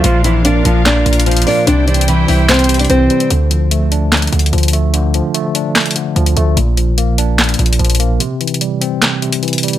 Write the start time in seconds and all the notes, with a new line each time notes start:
Already playing: D4 F4
0.04 A#1 A#2 F3 F4 A#4 F5, closed hi-hat
0.24 E3 F3 E4, closed hi-hat
0.45 A#3 D4 D5, closed hi-hat
0.65 A#1 F3 D4 F4, closed hi-hat
0.86 D4 D5, snare, clap, closed hi-hat
1.06 A#1 A#2, closed hi-hat
1.13 closed hi-hat
1.20 closed hi-hat
1.26 F3 F4, closed hi-hat
1.31 closed hi-hat
1.37 closed hi-hat
1.42 closed hi-hat
1.47 A#3 D4 D5, open hi-hat
1.67 C2 C3 D4 E4 G4 C5 D5 G5, closed hi-hat
1.88 E3 D4 D5, closed hi-hat
1.94 closed hi-hat
2.01 closed hi-hat
2.08 E3 G3 E4, closed hi-hat
2.28 C2 E3 C4 E4, open hi-hat
2.49 C4 C5, snare, clap, closed hi-hat
2.54 closed hi-hat
2.59 closed hi-hat
2.64 closed hi-hat
2.69 C3, closed hi-hat
2.74 closed hi-hat
2.79 D4 D5, closed hi-hat
2.85 closed hi-hat
2.89 C2 E3 C4 C5, closed hi-hat
3.10 G3, closed hi-hat
3.20 closed hi-hat
3.30 D2 D3, closed hi-hat
3.51 F3, closed hi-hat
3.71 A3, closed hi-hat
3.92 D4, closed hi-hat
4.12 snare, clap, closed hi-hat
4.17 closed hi-hat
4.22 closed hi-hat
4.27 closed hi-hat
4.33 D2 D3, closed hi-hat
4.39 closed hi-hat
4.46 closed hi-hat
4.53 D2 F3, closed hi-hat
4.58 closed hi-hat
4.63 closed hi-hat
4.68 closed hi-hat
4.73 A3, closed hi-hat
4.94 D3, closed hi-hat
5.14 F3, closed hi-hat
5.34 A3, closed hi-hat
5.55 D4, closed hi-hat
5.75 snare, clap, closed hi-hat
5.80 closed hi-hat
5.86 closed hi-hat
5.91 closed hi-hat
5.96 D3, closed hi-hat
6.16 D2 F3, closed hi-hat
6.26 closed hi-hat
6.37 D2 A3, closed hi-hat
6.57 A#1 A#2, closed hi-hat
6.77 F3, closed hi-hat
6.98 A#3, closed hi-hat
7.18 D4, closed hi-hat
7.39 snare, clap, closed hi-hat
7.44 closed hi-hat
7.49 closed hi-hat
7.54 closed hi-hat
7.59 A#1 A#2, closed hi-hat
7.66 closed hi-hat
7.73 closed hi-hat
7.79 A#1 F3, closed hi-hat
7.85 closed hi-hat
7.90 closed hi-hat
7.95 closed hi-hat
8.00 A#3, closed hi-hat
8.20 C3, closed hi-hat
8.41 E3, closed hi-hat
8.48 closed hi-hat
8.54 closed hi-hat
8.61 G3, closed hi-hat
8.81 C4, closed hi-hat
9.02 snare, clap, closed hi-hat
9.22 C3, closed hi-hat
9.33 closed hi-hat
9.43 E3, closed hi-hat
9.48 closed hi-hat
9.53 closed hi-hat
9.58 closed hi-hat
9.63 G3, closed hi-hat
9.68 closed hi-hat
9.73 closed hi-hat